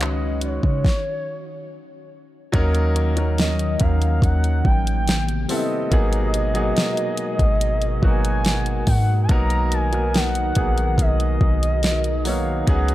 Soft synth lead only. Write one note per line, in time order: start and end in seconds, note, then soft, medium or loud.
0.02 0.40 D#5 medium
0.44 2.08 C#5 medium
3.39 3.83 D#5 medium
3.81 4.25 F5 medium
4.24 4.65 F#5 loud
4.66 5.46 G5 loud
5.51 8.05 D#5 loud
8.04 8.88 G#5 loud
8.88 9.21 F#5 loud
9.23 9.32 A5 medium
9.31 9.75 A#5 loud
9.73 10.17 G#5 loud
10.16 11.02 F#5 loud
11.01 12.29 D#5 loud
12.27 12.69 F5 medium
12.69 12.95 F#5 loud